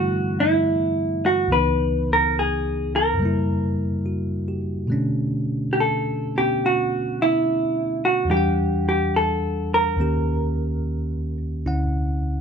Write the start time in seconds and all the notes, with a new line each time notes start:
Already playing: G2 D3 E3 G3 A3 B3 E4 F#4 F#5
0.40 E4
1.26 F#4
1.48 C#2 C#3 E3 B3
1.52 D#4 B4
2.13 A#4
2.39 G#4
2.96 A#4
3.14 F#2 C#3
3.20 G3 A#3
3.25 E4
4.06 F#4
4.48 G4
4.87 B2 D3 A3
4.92 C#4 D4
5.73 G4
5.80 A4
6.36 B3 C#4 G4
6.66 F#4
7.22 E4
8.05 F#4
8.25 E2 E3
8.30 G3 D4 G4
8.37 F#5
8.89 G4
9.16 A4
9.74 A#4
9.96 D#2 D#3 A#3 C#4
10.01 G4
11.66 D2 D3 C#4 E4 F#5